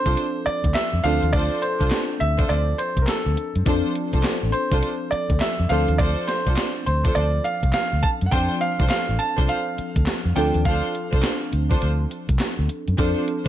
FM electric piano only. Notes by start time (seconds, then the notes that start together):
Already playing: F3 C4 D4 A4
1.04 F3 C4 D4 A4
3.66 F3 C4 D4 A4
5.69 F3 C4 D4 A4
8.32 F3 C4 D4 A4
10.36 F3 C4 D4 A4
12.98 F3 C4 D4 A4